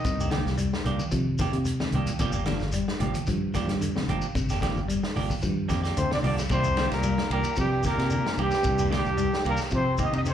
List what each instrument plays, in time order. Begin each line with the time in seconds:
Already playing: trombone section D#3, trombone D#4, trumpet D#5
0.04 fingered electric bass C2, clean electric guitar C3, kick, closed hi-hat, shekere
0.20 clean electric guitar A#3 D4 G4, shekere
0.30 clean electric guitar D3 D#3 A#3 G4, muted clean electric guitar stroke, snare, closed hi-hat, high conga
0.46 fingered electric bass C2, snare, shekere
0.58 clean electric guitar G3, closed hi-hat, shekere
0.73 snare
0.85 fingered electric bass C2, clean electric guitar D#3 A#3 D4 G4, closed hi-hat, low conga, shekere
1.00 high conga, shekere
1.11 fingered electric bass C3, clean electric guitar F3, kick, closed hi-hat, high conga, shekere
1.38 clean electric guitar D#3 A#3 D4 G4, kick, snare, closed hi-hat, high conga, shekere
1.52 fingered electric bass C3, closed hi-hat, shekere
1.65 muted clean electric guitar stroke, closed hi-hat, shekere
1.80 clean electric guitar C3, snare, high conga
1.92 fingered electric bass C2, clean electric guitar D#3 A#3 D4 G4, closed hi-hat, low conga, shekere
2.07 closed hi-hat, high conga, low conga, shekere
2.19 fingered electric bass G1, clean electric guitar C3 F3 A#3 D4 G4, kick, closed hi-hat, shekere
2.32 clean electric guitar A#3 D4 G4, shekere
2.45 clean electric guitar D3 F3 A#3 D4, muted clean electric guitar stroke, snare, closed hi-hat, high conga
2.60 fingered electric bass G1, snare, shekere
2.72 clean electric guitar G3, closed hi-hat, shekere
2.88 snare
2.99 fingered electric bass G1, clean electric guitar F3 A#3 D4 G4, closed hi-hat, low conga, shekere
3.14 closed hi-hat, high conga, shekere
3.26 fingered electric bass G2, clean electric guitar F3, kick, closed hi-hat, shekere
3.54 clean electric guitar D#3 F3 A#3 D4 G4, kick, snare, closed hi-hat, high conga, shekere
3.68 fingered electric bass G2, snare, closed hi-hat, high conga, shekere
3.81 clean electric guitar D3, closed hi-hat, shekere
3.96 clean electric guitar C3, snare, high conga
4.08 fingered electric bass G1, clean electric guitar F3 A#3 D4 G4, closed hi-hat, low conga, shekere
4.22 shekere
4.35 fingered electric bass G1, clean electric guitar C3, kick, closed hi-hat, shekere
4.49 clean electric guitar A#3 D4 G4, snare, shekere
4.61 clean electric guitar D3 F3 A#3 D4 G4, kick, snare, closed hi-hat, high conga
4.76 fingered electric bass G1, shekere
4.88 clean electric guitar G3, closed hi-hat, shekere
5.03 snare
5.15 fingered electric bass G1, clean electric guitar F3 A#3 D4 G4, open hi-hat, low conga, shekere
5.30 kick, high conga, shekere
5.42 fingered electric bass G2, clean electric guitar F3, kick, closed hi-hat, high conga, shekere
5.68 fingered electric bass F2, clean electric guitar D#3 F3 A#3 D4 G4, kick, snare, closed hi-hat, high conga, shekere
5.83 clean electric guitar A#3 D4 G4, snare, closed hi-hat, shekere
5.97 fingered electric bass D2, trombone section C3, clean electric guitar D3, trombone C4, trumpet C5, closed hi-hat, shekere
6.11 clean electric guitar C3, trombone section D3, trombone D4, trumpet D5, snare, high conga
6.22 fingered electric bass C2, trombone section D3, clean electric guitar F3 A#3 D4 G4, trombone D4, trumpet D5, open hi-hat, low conga, shekere
6.38 snare, closed hi-hat, high conga, shekere
6.49 fingered electric bass C2, trombone section C3, clean electric guitar C3 D#3 A#3 D4 G4, trombone C4, trumpet C5, kick, ride bell, shekere
6.64 shekere
6.77 clean electric guitar D3 D#3 A#3 D4 G4, snare, ride bell
6.90 fingered electric bass C2, trombone section A#2, trombone A#3, trumpet A#4, snare, ride bell, shekere
7.03 clean electric guitar G3, ride bell, shekere
7.18 snare
7.29 fingered electric bass C2, trombone section A#2, clean electric guitar D#3 A#3 D4 G4, trombone A#3, trumpet A#4, ride bell, shekere
7.44 ride bell, shekere
7.56 trombone section G2, fingered electric bass C3, clean electric guitar F3, trombone G3, trumpet G4, kick, ride bell, shekere
7.83 trombone section A#2, clean electric guitar D#3 A#3, trombone A#3, trumpet A#4, kick, snare, ride bell, shekere
7.87 clean electric guitar G4
7.98 fingered electric bass C3, clean electric guitar A#3 D4 G4, snare, ride bell, shekere
8.10 clean electric guitar D3, ride bell, shekere
8.24 clean electric guitar C3, snare
8.37 fingered electric bass C2, trombone section G2, clean electric guitar D#3 A#3 D4 G4, trombone G3, trumpet G4, ride bell, shekere
8.51 snare, shekere
8.63 fingered electric bass C2, clean electric guitar C3, kick, ride bell, shekere
8.79 clean electric guitar A#3 D4 G4, shekere
8.90 trombone section G2, clean electric guitar D3 D#3 A#3 D4 G4, trombone G3, snare, ride bell
8.95 trumpet G4
9.05 fingered electric bass C2, shekere
9.18 clean electric guitar G3, ride bell, shekere
9.34 snare
9.44 fingered electric bass C2, trombone section A#2, clean electric guitar D#3 A#3 D4 G4, trombone A#3, ride bell, shekere
9.49 trumpet A#4
9.57 snare, shekere
9.71 trombone section C3, fingered electric bass C3, clean electric guitar F3, trombone C4, kick, ride bell, shekere
9.75 trumpet C5
9.98 clean electric guitar D#3 A#3 G4, trombone section D#3, trombone D#4, kick, ride bell, shekere
10.04 trumpet D#5
10.11 fingered electric bass C3, trombone section D#3, trombone D#4, ride bell, shekere
10.16 trumpet D#5
10.24 trombone section C3, clean electric guitar D3, trombone C4, ride bell, shekere
10.29 trumpet C5